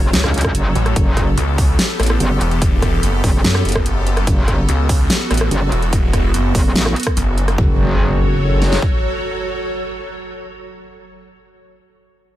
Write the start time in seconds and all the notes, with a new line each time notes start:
Already playing: F#1 F#3 F#4 A4 C#5
0.13 C#2, snare, closed hi-hat
0.24 C#2, cross-stick
0.34 closed hi-hat
0.38 closed hi-hat
0.41 kick, cross-stick, closed hi-hat
0.55 F#1, closed hi-hat
0.75 A1, closed hi-hat
0.86 cross-stick, closed hi-hat
0.96 F#1 B3 G4, kick, closed hi-hat
1.17 kick, cross-stick, closed hi-hat
1.38 C#2, closed hi-hat
1.58 kick, open hi-hat
1.79 snare, closed hi-hat
2.00 A1, cross-stick, closed hi-hat
2.03 closed hi-hat
2.06 cross-stick, closed hi-hat
2.20 F#1, closed hi-hat
2.41 E1, closed hi-hat
2.51 closed hi-hat
2.62 kick, closed hi-hat
2.82 kick, cross-stick, closed hi-hat
3.03 F#1, closed hi-hat
3.24 F#1, kick, open hi-hat
3.44 F#2, snare, closed hi-hat
3.55 cross-stick
3.65 F#1, closed hi-hat
3.69 closed hi-hat
3.72 kick, cross-stick, closed hi-hat
3.86 closed hi-hat
4.07 closed hi-hat
4.17 cross-stick, closed hi-hat
4.27 F#1 F#4, kick, closed hi-hat
4.48 kick, cross-stick, closed hi-hat
4.69 C#2, closed hi-hat
4.89 kick, open hi-hat
5.10 snare, closed hi-hat
5.31 A1, cross-stick, closed hi-hat
5.34 closed hi-hat
5.38 cross-stick, closed hi-hat
5.51 F#1, closed hi-hat
5.72 E1, closed hi-hat
5.82 closed hi-hat
5.93 kick, closed hi-hat
6.13 kick, cross-stick, closed hi-hat
6.34 F#1, closed hi-hat
6.55 F#1, kick, open hi-hat
6.76 A1, snare, closed hi-hat
6.86 cross-stick
6.96 closed hi-hat
7.00 closed hi-hat
7.03 kick, cross-stick, closed hi-hat
7.17 F#1, closed hi-hat
7.38 closed hi-hat
7.48 cross-stick, closed hi-hat
7.58 F#1 F#3 F#4 A4 C#5, kick, impact
8.62 snare
8.72 snare
8.82 kick